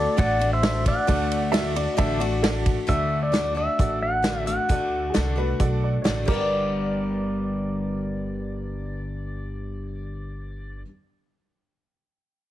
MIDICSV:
0, 0, Header, 1, 7, 480
1, 0, Start_track
1, 0, Key_signature, 1, "major"
1, 0, Tempo, 451467
1, 1153, Time_signature, 4, 2, 24, 8
1, 13296, End_track
2, 0, Start_track
2, 0, Title_t, "Pedal steel guitar"
2, 0, Program_c, 0, 26
2, 0, Note_on_c, 0, 69, 69
2, 0, Note_on_c, 0, 74, 92
2, 166, Note_off_c, 0, 69, 0
2, 199, Note_off_c, 0, 74, 0
2, 205, Note_on_c, 0, 78, 107
2, 212, Note_on_c, 0, 74, 84
2, 538, Note_off_c, 0, 74, 0
2, 562, Note_off_c, 0, 78, 0
2, 566, Note_on_c, 0, 76, 101
2, 572, Note_on_c, 0, 72, 71
2, 895, Note_off_c, 0, 76, 0
2, 898, Note_off_c, 0, 72, 0
2, 933, Note_on_c, 0, 74, 77
2, 941, Note_on_c, 0, 78, 103
2, 1599, Note_off_c, 0, 74, 0
2, 1601, Note_off_c, 0, 78, 0
2, 3071, Note_on_c, 0, 76, 91
2, 3432, Note_on_c, 0, 74, 77
2, 3441, Note_off_c, 0, 76, 0
2, 3798, Note_on_c, 0, 76, 88
2, 3802, Note_off_c, 0, 74, 0
2, 4241, Note_off_c, 0, 76, 0
2, 4279, Note_on_c, 0, 78, 99
2, 4740, Note_off_c, 0, 78, 0
2, 4753, Note_on_c, 0, 78, 90
2, 6392, Note_off_c, 0, 78, 0
2, 6685, Note_on_c, 0, 74, 70
2, 11506, Note_off_c, 0, 74, 0
2, 13296, End_track
3, 0, Start_track
3, 0, Title_t, "Upright piano"
3, 0, Program_c, 1, 0
3, 1614, Note_on_c, 1, 76, 89
3, 1855, Note_off_c, 1, 76, 0
3, 1873, Note_on_c, 1, 74, 86
3, 2060, Note_on_c, 1, 75, 61
3, 2093, Note_off_c, 1, 75, 0
3, 2105, Note_off_c, 1, 74, 0
3, 2108, Note_on_c, 1, 76, 96
3, 2331, Note_on_c, 1, 74, 91
3, 2342, Note_off_c, 1, 76, 0
3, 2573, Note_off_c, 1, 74, 0
3, 2577, Note_on_c, 1, 69, 88
3, 2816, Note_off_c, 1, 69, 0
3, 5419, Note_on_c, 1, 68, 56
3, 5452, Note_off_c, 1, 68, 0
3, 5464, Note_on_c, 1, 69, 82
3, 5701, Note_off_c, 1, 69, 0
3, 5718, Note_on_c, 1, 71, 78
3, 5948, Note_off_c, 1, 71, 0
3, 5961, Note_on_c, 1, 69, 72
3, 6190, Note_off_c, 1, 69, 0
3, 6207, Note_on_c, 1, 74, 67
3, 6400, Note_on_c, 1, 73, 60
3, 6430, Note_off_c, 1, 73, 0
3, 6433, Note_off_c, 1, 74, 0
3, 6449, Note_on_c, 1, 74, 86
3, 6662, Note_off_c, 1, 74, 0
3, 6678, Note_on_c, 1, 70, 84
3, 6678, Note_on_c, 1, 74, 94
3, 11499, Note_off_c, 1, 70, 0
3, 11500, Note_off_c, 1, 74, 0
3, 13296, End_track
4, 0, Start_track
4, 0, Title_t, "Honky-tonk piano"
4, 0, Program_c, 2, 3
4, 177, Note_on_c, 2, 62, 79
4, 178, Note_on_c, 2, 69, 70
4, 179, Note_on_c, 2, 66, 69
4, 184, Note_on_c, 2, 74, 77
4, 527, Note_off_c, 2, 62, 0
4, 528, Note_off_c, 2, 66, 0
4, 528, Note_off_c, 2, 69, 0
4, 530, Note_off_c, 2, 74, 0
4, 668, Note_on_c, 2, 62, 69
4, 670, Note_on_c, 2, 66, 65
4, 672, Note_on_c, 2, 74, 80
4, 673, Note_on_c, 2, 69, 67
4, 1012, Note_off_c, 2, 62, 0
4, 1013, Note_off_c, 2, 66, 0
4, 1014, Note_off_c, 2, 74, 0
4, 1015, Note_off_c, 2, 69, 0
4, 1141, Note_on_c, 2, 62, 104
4, 1143, Note_on_c, 2, 66, 95
4, 1143, Note_on_c, 2, 74, 111
4, 1148, Note_on_c, 2, 69, 96
4, 1488, Note_off_c, 2, 62, 0
4, 1489, Note_off_c, 2, 66, 0
4, 1489, Note_off_c, 2, 74, 0
4, 1492, Note_off_c, 2, 69, 0
4, 1612, Note_on_c, 2, 62, 84
4, 1613, Note_on_c, 2, 66, 72
4, 1614, Note_on_c, 2, 69, 79
4, 1616, Note_on_c, 2, 74, 92
4, 1963, Note_off_c, 2, 62, 0
4, 1964, Note_off_c, 2, 66, 0
4, 1965, Note_off_c, 2, 69, 0
4, 1966, Note_off_c, 2, 74, 0
4, 2098, Note_on_c, 2, 62, 89
4, 2100, Note_on_c, 2, 66, 81
4, 2104, Note_on_c, 2, 69, 86
4, 2106, Note_on_c, 2, 74, 98
4, 2446, Note_off_c, 2, 62, 0
4, 2447, Note_off_c, 2, 66, 0
4, 2449, Note_off_c, 2, 69, 0
4, 2450, Note_off_c, 2, 74, 0
4, 2591, Note_on_c, 2, 66, 76
4, 2592, Note_on_c, 2, 62, 83
4, 2592, Note_on_c, 2, 69, 81
4, 2593, Note_on_c, 2, 74, 94
4, 2933, Note_off_c, 2, 62, 0
4, 2933, Note_off_c, 2, 66, 0
4, 2933, Note_off_c, 2, 69, 0
4, 2934, Note_off_c, 2, 74, 0
4, 3071, Note_on_c, 2, 69, 64
4, 3073, Note_on_c, 2, 66, 68
4, 3077, Note_on_c, 2, 74, 78
4, 3413, Note_off_c, 2, 69, 0
4, 3414, Note_off_c, 2, 66, 0
4, 3416, Note_off_c, 2, 74, 0
4, 3538, Note_on_c, 2, 66, 68
4, 3543, Note_on_c, 2, 69, 61
4, 3549, Note_on_c, 2, 74, 77
4, 3886, Note_off_c, 2, 66, 0
4, 3889, Note_off_c, 2, 69, 0
4, 3892, Note_off_c, 2, 74, 0
4, 4033, Note_on_c, 2, 66, 71
4, 4035, Note_on_c, 2, 69, 66
4, 4036, Note_on_c, 2, 74, 69
4, 4374, Note_off_c, 2, 66, 0
4, 4375, Note_off_c, 2, 69, 0
4, 4376, Note_off_c, 2, 74, 0
4, 4507, Note_on_c, 2, 66, 60
4, 4509, Note_on_c, 2, 74, 70
4, 4511, Note_on_c, 2, 69, 63
4, 4851, Note_off_c, 2, 66, 0
4, 4852, Note_off_c, 2, 74, 0
4, 4853, Note_off_c, 2, 69, 0
4, 4991, Note_on_c, 2, 66, 75
4, 4998, Note_on_c, 2, 69, 71
4, 5002, Note_on_c, 2, 74, 75
4, 5334, Note_off_c, 2, 66, 0
4, 5337, Note_off_c, 2, 69, 0
4, 5339, Note_off_c, 2, 74, 0
4, 5470, Note_on_c, 2, 66, 75
4, 5472, Note_on_c, 2, 74, 84
4, 5473, Note_on_c, 2, 69, 73
4, 5813, Note_off_c, 2, 66, 0
4, 5814, Note_off_c, 2, 74, 0
4, 5815, Note_off_c, 2, 69, 0
4, 5950, Note_on_c, 2, 66, 78
4, 5950, Note_on_c, 2, 69, 71
4, 5953, Note_on_c, 2, 74, 87
4, 6294, Note_off_c, 2, 66, 0
4, 6294, Note_off_c, 2, 69, 0
4, 6296, Note_off_c, 2, 74, 0
4, 6436, Note_on_c, 2, 69, 65
4, 6437, Note_on_c, 2, 66, 68
4, 6439, Note_on_c, 2, 74, 76
4, 6657, Note_on_c, 2, 67, 75
4, 6675, Note_off_c, 2, 66, 0
4, 6675, Note_off_c, 2, 69, 0
4, 6676, Note_off_c, 2, 74, 0
4, 6678, Note_on_c, 2, 71, 66
4, 6699, Note_on_c, 2, 74, 79
4, 11478, Note_off_c, 2, 67, 0
4, 11500, Note_off_c, 2, 71, 0
4, 11521, Note_off_c, 2, 74, 0
4, 13296, End_track
5, 0, Start_track
5, 0, Title_t, "Steel-string acoustic guitar"
5, 0, Program_c, 3, 25
5, 0, Note_on_c, 3, 57, 43
5, 0, Note_on_c, 3, 62, 43
5, 0, Note_on_c, 3, 66, 48
5, 176, Note_off_c, 3, 57, 0
5, 177, Note_off_c, 3, 62, 0
5, 182, Note_off_c, 3, 66, 0
5, 183, Note_on_c, 3, 50, 73
5, 189, Note_on_c, 3, 57, 83
5, 190, Note_on_c, 3, 62, 83
5, 195, Note_on_c, 3, 66, 82
5, 405, Note_off_c, 3, 66, 0
5, 418, Note_off_c, 3, 62, 0
5, 418, Note_on_c, 3, 66, 57
5, 428, Note_off_c, 3, 50, 0
5, 431, Note_off_c, 3, 57, 0
5, 431, Note_on_c, 3, 62, 52
5, 443, Note_on_c, 3, 57, 47
5, 1140, Note_on_c, 3, 50, 91
5, 1142, Note_off_c, 3, 57, 0
5, 1146, Note_on_c, 3, 57, 90
5, 1147, Note_off_c, 3, 62, 0
5, 1151, Note_off_c, 3, 66, 0
5, 1151, Note_on_c, 3, 62, 90
5, 1155, Note_on_c, 3, 66, 89
5, 1607, Note_off_c, 3, 50, 0
5, 1615, Note_off_c, 3, 57, 0
5, 1619, Note_off_c, 3, 62, 0
5, 1620, Note_on_c, 3, 50, 70
5, 1628, Note_on_c, 3, 57, 70
5, 1630, Note_off_c, 3, 66, 0
5, 1632, Note_on_c, 3, 62, 65
5, 1643, Note_on_c, 3, 66, 79
5, 1850, Note_off_c, 3, 66, 0
5, 1860, Note_off_c, 3, 62, 0
5, 1863, Note_on_c, 3, 66, 52
5, 1865, Note_off_c, 3, 50, 0
5, 1870, Note_off_c, 3, 57, 0
5, 1872, Note_on_c, 3, 62, 46
5, 1887, Note_on_c, 3, 57, 42
5, 2086, Note_off_c, 3, 57, 0
5, 2092, Note_on_c, 3, 50, 86
5, 2095, Note_off_c, 3, 62, 0
5, 2097, Note_off_c, 3, 66, 0
5, 2099, Note_on_c, 3, 57, 93
5, 2107, Note_on_c, 3, 62, 95
5, 2110, Note_on_c, 3, 66, 97
5, 2326, Note_off_c, 3, 66, 0
5, 2331, Note_off_c, 3, 62, 0
5, 2338, Note_on_c, 3, 66, 70
5, 2341, Note_off_c, 3, 50, 0
5, 2343, Note_on_c, 3, 62, 59
5, 2345, Note_off_c, 3, 57, 0
5, 2357, Note_on_c, 3, 57, 50
5, 3046, Note_off_c, 3, 57, 0
5, 3046, Note_off_c, 3, 66, 0
5, 3047, Note_off_c, 3, 62, 0
5, 3049, Note_on_c, 3, 50, 75
5, 3059, Note_on_c, 3, 57, 74
5, 3059, Note_on_c, 3, 62, 80
5, 3059, Note_on_c, 3, 66, 82
5, 3523, Note_off_c, 3, 57, 0
5, 3524, Note_off_c, 3, 50, 0
5, 3528, Note_on_c, 3, 50, 57
5, 3532, Note_off_c, 3, 62, 0
5, 3533, Note_off_c, 3, 66, 0
5, 3536, Note_on_c, 3, 57, 58
5, 3536, Note_on_c, 3, 62, 60
5, 3546, Note_on_c, 3, 66, 65
5, 3757, Note_off_c, 3, 66, 0
5, 3770, Note_off_c, 3, 62, 0
5, 3770, Note_on_c, 3, 66, 48
5, 3779, Note_off_c, 3, 50, 0
5, 3783, Note_off_c, 3, 57, 0
5, 3783, Note_on_c, 3, 62, 42
5, 3795, Note_on_c, 3, 57, 36
5, 4488, Note_off_c, 3, 57, 0
5, 4491, Note_on_c, 3, 50, 53
5, 4495, Note_off_c, 3, 66, 0
5, 4501, Note_on_c, 3, 57, 61
5, 4503, Note_off_c, 3, 62, 0
5, 4507, Note_on_c, 3, 62, 66
5, 4508, Note_on_c, 3, 66, 66
5, 4729, Note_off_c, 3, 66, 0
5, 4741, Note_off_c, 3, 50, 0
5, 4742, Note_off_c, 3, 62, 0
5, 4742, Note_on_c, 3, 66, 47
5, 4746, Note_off_c, 3, 57, 0
5, 4755, Note_on_c, 3, 62, 40
5, 4762, Note_on_c, 3, 57, 41
5, 4984, Note_off_c, 3, 57, 0
5, 4984, Note_on_c, 3, 50, 71
5, 4985, Note_off_c, 3, 62, 0
5, 4987, Note_off_c, 3, 66, 0
5, 4996, Note_on_c, 3, 57, 76
5, 4998, Note_on_c, 3, 62, 86
5, 4998, Note_on_c, 3, 66, 75
5, 5450, Note_off_c, 3, 50, 0
5, 5453, Note_off_c, 3, 57, 0
5, 5458, Note_off_c, 3, 62, 0
5, 5463, Note_on_c, 3, 50, 62
5, 5465, Note_on_c, 3, 57, 64
5, 5466, Note_off_c, 3, 66, 0
5, 5471, Note_on_c, 3, 62, 69
5, 5479, Note_on_c, 3, 66, 78
5, 5682, Note_off_c, 3, 66, 0
5, 5695, Note_on_c, 3, 66, 56
5, 5698, Note_off_c, 3, 62, 0
5, 5704, Note_off_c, 3, 57, 0
5, 5708, Note_off_c, 3, 50, 0
5, 5711, Note_on_c, 3, 62, 44
5, 5716, Note_on_c, 3, 57, 43
5, 6418, Note_off_c, 3, 57, 0
5, 6423, Note_on_c, 3, 50, 68
5, 6424, Note_off_c, 3, 66, 0
5, 6425, Note_off_c, 3, 62, 0
5, 6431, Note_on_c, 3, 57, 65
5, 6438, Note_on_c, 3, 62, 69
5, 6440, Note_on_c, 3, 66, 66
5, 6649, Note_on_c, 3, 43, 64
5, 6659, Note_off_c, 3, 50, 0
5, 6672, Note_off_c, 3, 57, 0
5, 6672, Note_on_c, 3, 50, 67
5, 6676, Note_off_c, 3, 62, 0
5, 6677, Note_off_c, 3, 66, 0
5, 6687, Note_on_c, 3, 55, 73
5, 6702, Note_on_c, 3, 59, 72
5, 6718, Note_on_c, 3, 62, 76
5, 6736, Note_on_c, 3, 67, 80
5, 11513, Note_off_c, 3, 43, 0
5, 11536, Note_off_c, 3, 50, 0
5, 11551, Note_off_c, 3, 55, 0
5, 11566, Note_off_c, 3, 59, 0
5, 11582, Note_off_c, 3, 62, 0
5, 11600, Note_off_c, 3, 67, 0
5, 13296, End_track
6, 0, Start_track
6, 0, Title_t, "Upright bass"
6, 0, Program_c, 4, 32
6, 194, Note_on_c, 4, 33, 88
6, 1009, Note_off_c, 4, 33, 0
6, 1153, Note_on_c, 4, 38, 82
6, 1968, Note_off_c, 4, 38, 0
6, 2115, Note_on_c, 4, 33, 93
6, 2929, Note_off_c, 4, 33, 0
6, 3072, Note_on_c, 4, 38, 76
6, 3887, Note_off_c, 4, 38, 0
6, 4032, Note_on_c, 4, 33, 77
6, 4848, Note_off_c, 4, 33, 0
6, 4989, Note_on_c, 4, 38, 82
6, 5398, Note_off_c, 4, 38, 0
6, 5485, Note_on_c, 4, 36, 81
6, 5888, Note_off_c, 4, 36, 0
6, 5952, Note_on_c, 4, 35, 83
6, 6361, Note_off_c, 4, 35, 0
6, 6433, Note_on_c, 4, 33, 72
6, 6637, Note_off_c, 4, 33, 0
6, 6675, Note_on_c, 4, 31, 80
6, 11496, Note_off_c, 4, 31, 0
6, 13296, End_track
7, 0, Start_track
7, 0, Title_t, "Drums"
7, 195, Note_on_c, 9, 36, 109
7, 199, Note_on_c, 9, 51, 80
7, 301, Note_off_c, 9, 36, 0
7, 305, Note_off_c, 9, 51, 0
7, 439, Note_on_c, 9, 51, 67
7, 545, Note_off_c, 9, 51, 0
7, 672, Note_on_c, 9, 38, 117
7, 672, Note_on_c, 9, 51, 91
7, 778, Note_off_c, 9, 38, 0
7, 778, Note_off_c, 9, 51, 0
7, 912, Note_on_c, 9, 51, 77
7, 913, Note_on_c, 9, 36, 86
7, 1018, Note_off_c, 9, 51, 0
7, 1019, Note_off_c, 9, 36, 0
7, 1152, Note_on_c, 9, 36, 107
7, 1154, Note_on_c, 9, 51, 80
7, 1258, Note_off_c, 9, 36, 0
7, 1261, Note_off_c, 9, 51, 0
7, 1398, Note_on_c, 9, 51, 64
7, 1504, Note_off_c, 9, 51, 0
7, 1636, Note_on_c, 9, 38, 123
7, 1636, Note_on_c, 9, 51, 88
7, 1742, Note_off_c, 9, 38, 0
7, 1742, Note_off_c, 9, 51, 0
7, 1874, Note_on_c, 9, 51, 72
7, 1980, Note_off_c, 9, 51, 0
7, 2109, Note_on_c, 9, 51, 85
7, 2110, Note_on_c, 9, 36, 100
7, 2215, Note_off_c, 9, 51, 0
7, 2216, Note_off_c, 9, 36, 0
7, 2351, Note_on_c, 9, 51, 66
7, 2458, Note_off_c, 9, 51, 0
7, 2590, Note_on_c, 9, 38, 115
7, 2590, Note_on_c, 9, 51, 87
7, 2696, Note_off_c, 9, 38, 0
7, 2696, Note_off_c, 9, 51, 0
7, 2826, Note_on_c, 9, 51, 66
7, 2829, Note_on_c, 9, 36, 88
7, 2932, Note_off_c, 9, 51, 0
7, 2935, Note_off_c, 9, 36, 0
7, 3069, Note_on_c, 9, 36, 102
7, 3069, Note_on_c, 9, 42, 54
7, 3175, Note_off_c, 9, 36, 0
7, 3175, Note_off_c, 9, 42, 0
7, 3547, Note_on_c, 9, 38, 103
7, 3547, Note_on_c, 9, 42, 58
7, 3653, Note_off_c, 9, 38, 0
7, 3653, Note_off_c, 9, 42, 0
7, 4030, Note_on_c, 9, 36, 97
7, 4032, Note_on_c, 9, 42, 61
7, 4137, Note_off_c, 9, 36, 0
7, 4138, Note_off_c, 9, 42, 0
7, 4507, Note_on_c, 9, 38, 100
7, 4507, Note_on_c, 9, 42, 60
7, 4614, Note_off_c, 9, 38, 0
7, 4614, Note_off_c, 9, 42, 0
7, 4752, Note_on_c, 9, 42, 65
7, 4859, Note_off_c, 9, 42, 0
7, 4990, Note_on_c, 9, 42, 60
7, 4991, Note_on_c, 9, 36, 99
7, 5097, Note_off_c, 9, 36, 0
7, 5097, Note_off_c, 9, 42, 0
7, 5470, Note_on_c, 9, 38, 107
7, 5470, Note_on_c, 9, 42, 62
7, 5576, Note_off_c, 9, 38, 0
7, 5576, Note_off_c, 9, 42, 0
7, 5950, Note_on_c, 9, 42, 57
7, 5953, Note_on_c, 9, 36, 90
7, 6056, Note_off_c, 9, 42, 0
7, 6059, Note_off_c, 9, 36, 0
7, 6433, Note_on_c, 9, 38, 108
7, 6433, Note_on_c, 9, 42, 59
7, 6540, Note_off_c, 9, 38, 0
7, 6540, Note_off_c, 9, 42, 0
7, 6672, Note_on_c, 9, 49, 85
7, 6676, Note_on_c, 9, 36, 106
7, 6779, Note_off_c, 9, 49, 0
7, 6782, Note_off_c, 9, 36, 0
7, 13296, End_track
0, 0, End_of_file